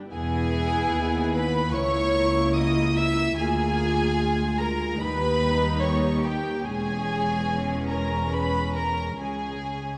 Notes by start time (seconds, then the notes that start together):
0.08 E2 B3 E4 G#4 G#5
0.12 E1
0.92 D#2
1.32 B4 B5
1.73 C#2 A#3 E4 C#5 C#6
2.56 D#5 D#6
2.96 E5 E6
3.37 D2 A#3 F4 G#4 G#5
4.17 G#3
4.58 A#4 A#5
4.99 D#2 G3 D#4 B4 B5
5.79 C#5 C#6
6.20 G4
6.25 G5
6.63 E1 E2 G#3 C#4 G#4 G#5
7.87 A#4 A#5
8.31 B4 B5
8.73 A#4 A#5
9.19 C#2 G#3 C#4 G#4 G#5